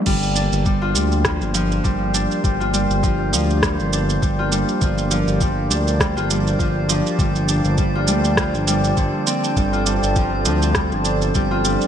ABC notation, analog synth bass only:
X:1
M:4/4
L:1/16
Q:"Swing 16ths" 1/4=101
K:Gm
V:1 name="Analog synth bass" clef=bass
G,,,3 G,,,3 D,,3 G,,,3 G,,,3 z | G,,,3 G,,,3 D,,3 G,,,3 G,,,3 z | G,,,3 G,,,3 D,,3 G,,,3 G,,,3 z | G,,,3 G,,,3 D,,3 G,,,3 G,,, z3 |
G,,,3 G,,,3 D,,3 G,,,3 G,,,3 z |]